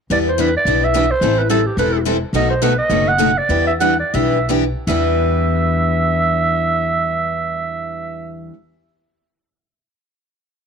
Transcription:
0.10 E2 E3 G3 B3 D4 E4 G4 B4 D5
0.29 C5
0.38 E3 G3 B3 D4 E4 G4 B4
0.57 D5
0.65 B1 E3 G3 B3 D4 E4 G4 B4
0.84 E5
0.94 E3 G3 B3 D4 E4 G4 B4
1.11 C5
1.21 A1 E3 G3 C4 E4 A4
1.39 B4
1.49 E3 G3 C4 E4 A4
1.66 G4
1.77 E1 E3 G3 C4 E4 A4 B4
2.06 E3 G3 C4 E4 A4
2.33 B1 B2 D#3 F#3 A3 B3 D#4 F#4 A4 D#5
2.50 C5
2.62 B2 D#3 F#3 A3 B3 D#4 F#4 A4 B4
2.78 D#5
2.89 F#1 B2 D#3 F#3 A3 B3 D#4 F#4 A4
3.08 F#5
3.18 B2 D#3 F#3 A3 B3 D#4 F#4 A4
3.38 D5
3.49 E2 E3 G3 B3 D4 E4 G4 B4
3.67 E5
3.80 E3 G3 B3 D4 E4 G4 B4 F#5
4.00 D5
4.14 B1 E3 G3 B3 D4 E4 G4 B4 E5
4.49 E3 G3 B3 D4 E4 G4 B4
4.87 E2 E3 G3 B3 D4 E4 G4 B4 E5

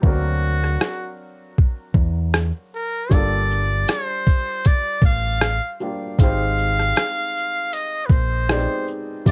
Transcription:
0.02 D2 F#3 A#3 C4 F#4, kick
0.06 D4 A#4
0.64 cross-stick
0.81 cross-stick
1.58 kick
1.94 E2, kick
2.34 cross-stick
2.75 A#4
3.09 G1 G3 A#3 D4 F4 D5, kick, closed hi-hat
3.15 A4
3.50 shaker
3.88 C5, cross-stick, closed hi-hat
4.27 kick, shaker
4.65 D5, kick, closed hi-hat
5.02 A1 F5, kick, shaker
5.41 cross-stick, closed hi-hat
5.80 G3 A#3 D4 F4 G4, shaker
6.18 G#1 G#3 C4 D#4 G4 F5, kick, closed hi-hat
6.23 C5
6.58 shaker
6.79 cross-stick
6.96 cross-stick, closed hi-hat
7.37 shaker
7.73 D#5, closed hi-hat
8.06 A#1 B4, kick, shaker
8.11 C5
8.49 G#3 B3 D#4 G4 D5, cross-stick, closed hi-hat
8.56 C4
8.88 shaker
9.26 F2 G3 C4 E4 D5, kick, closed hi-hat

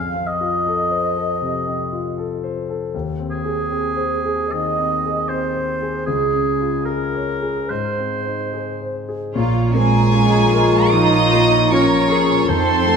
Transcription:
Already playing: F2 F5
0.14 C4
0.27 D#5
0.41 F4
0.67 A4
0.91 C5
1.17 A4
1.41 C3
1.67 C4
1.93 F4
2.18 A4
2.43 C5
2.69 A4
2.94 D#2
3.20 C4
3.31 G#4
3.45 G#4
3.70 C4
3.96 C5
4.25 G#4
4.50 D#3 D#5
4.79 C4
5.05 G#4
5.28 C4 C5
5.55 C5
5.82 G#4
6.06 C#2 G#4
6.33 C#4
6.60 F4
6.85 G#4 A#4
7.14 C#5
7.42 G#4
7.70 G#2 C5
7.98 C4
8.25 D#4
8.53 G#4
8.81 C5
9.09 G#4
9.34 A#1 A#2 F4 C#5 A#5
9.73 G#3 A#3 C4 G#4 G#5
10.13 C#4 F4
10.53 F4 A#4
10.92 F3 D#4 D#5 D#6
11.33 A#3
11.70 C#4 F4 A#4 C#5 C#6
12.10 G#4 A#4
12.48 F2 C4 D#4 A4 C5 A5 C6
12.86 A3

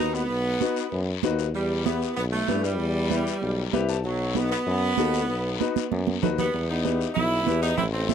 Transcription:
Already playing: D#4
0.00 D#2 D#4 F#4 B4
0.14 B3, short guiro
0.30 B1, high conga, long guiro
0.61 D#4 F#4 B4, high conga, short guiro
0.76 short guiro
0.92 F#2, high conga, long guiro
1.23 D#2 D#4 F#4 B4, high conga, short guiro
1.39 short guiro
1.55 E2 G3, high conga, long guiro
1.85 B3 E4 G4 B4, high conga, short guiro
2.02 short guiro
2.17 B1 B3, high conga, long guiro
2.32 A3
2.48 G2 E4 G4 B4, high conga, short guiro
2.63 G3, short guiro
2.79 E2, high conga, long guiro
3.10 E4 G4 B4, high conga, short guiro
3.27 short guiro
3.42 B1, high conga, long guiro
3.73 C2 E4 G4 B4 E5, high conga, short guiro
3.89 A5, short guiro
4.04 B1 F#3, high conga, long guiro
4.35 B3 D#4 F#4 B4, high conga, short guiro
4.52 B3, short guiro
4.67 F#2, high conga, long guiro
4.97 D#2 D#4 F#4 A4, high conga, short guiro
5.14 short guiro
5.29 B1, high conga, long guiro
5.60 D#4 F#4 B4, high conga, short guiro
5.76 high conga, short guiro
5.91 F#2, high conga, long guiro
6.07 high conga
6.22 D#2 F#3 A3 D#4 F#4 B4, low conga, short guiro
6.38 G3 B3, low conga, short guiro
6.54 E2, high conga, long guiro
6.69 B3 D#4
6.84 E4 G4 B4, high conga, short guiro
7.01 short guiro
7.14 B1 B3 E4, high conga, low conga, long guiro
7.46 E2 E4 G4 B4, high conga, short guiro
7.62 B3 D#4, short guiro
7.77 A1 C4 E4, high conga, low conga, long guiro
7.93 A3 C4
8.09 E4 A4 C5, high conga, short guiro

